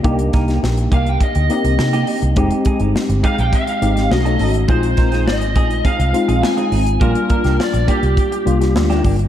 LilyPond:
<<
  \new Staff \with { instrumentName = "Lead electric guitar" } { \time 4/4 \key c \minor \tempo 4 = 103 r4. f''16 g''16 ees''8 ees''4 r8 | r4. f''16 g''16 f''4 dis''8. r16 | c''4 ees''4 f''4 aes''4 | bes'4 d''8 g'2 r8 | }
  \new Staff \with { instrumentName = "Clean electric guitar" } { \time 4/4 \key c \minor <bes ees' g'>16 r16 <bes ees' bes'>16 <bes ees' g'>16 r8 <bes ees' g'>16 r4. <bes ees' g'>16 <bes ees' g'>16 r16 | <aes ees' g'>16 r16 <aes ees' aes'>16 <aes ees' g'>16 r8 <aes ees' g'>16 r4. <cis' dis' a'>16 <cis' dis' a'>16 r16 | <c' ees' aes'>16 r16 <c' ees' bes'>16 <c' ees' aes'>16 r8 <c' ees' aes'>16 r16 <c' ees' aes'>16 r8 <c' ees' aes'>16 r16 <c' ees' aes'>16 <c' ees' aes'>16 r16 | <bes d' g'>16 r16 <bes d' bes'>16 <bes d' g'>16 r8 <bes d' g'>16 r4. <bes d' g'>16 <bes d' g'>16 r16 | }
  \new Staff \with { instrumentName = "Tine electric piano" } { \time 4/4 \key c \minor <bes d' ees' g'>4. r4 <bes c' ees' g'>4~ <bes c' ees' g'>16 r16 | <aes c' ees' g'>4. r4 <aes c' ees' g'>8 <a cis' d' dis' fis'>4 | <aes c' ees' f'>4. r4 <aes c' ees' f'>4~ <aes c' ees' f'>16 r16 | <g bes d' f'>4. r4 <g bes d' f'>4~ <g bes d' f'>16 r16 | }
  \new Staff \with { instrumentName = "Fingered electric bass" } { \clef bass \time 4/4 \key c \minor c,8 c,8 bes,,8 c,8 r16 d,16 r16 c,16 c8 r16 c,16 | f,,16 r8 g,,16 r16 g,,16 r16 bes,,16 r8 aes,,8 b,,8 aes,,8 | bes,,8 bes,,8 aes,,8 bes,,8 r16 c,16 r16 bes,,16 r8 aes,,8 | bes,,16 r8 c,16 r16 bes,,16 r16 c,16 r8 c,8 d,8 g,,8 | }
  \new DrumStaff \with { instrumentName = "Drums" } \drummode { \time 4/4 <hh bd>16 hh16 <hh bd sn>16 <hh sn>16 sn16 hh16 <hh bd>16 hh16 <hh bd>16 hh16 hh16 hh16 sn16 hh16 hho16 hh16 | <hh bd>16 hh16 <hh bd>16 hh16 sn16 hh16 <hh bd>16 hh16 <hh bd>16 hh16 hh16 <hh sn>16 sn16 hh16 hho16 hh16 | <hh bd>16 hh16 <hh bd sn>16 <hh sn>16 sn16 hh16 <hh bd>16 hh16 <hh bd>16 hh16 hh16 hh16 sn16 hh16 hho16 hh16 | <hh bd>16 hh16 <hh bd>16 <hh sn>16 sn16 hh16 <hh bd>16 hh16 <hh bd>16 hh16 hh16 <hh sn>16 sn16 <hh sn>16 <hho bd>16 hh16 | }
>>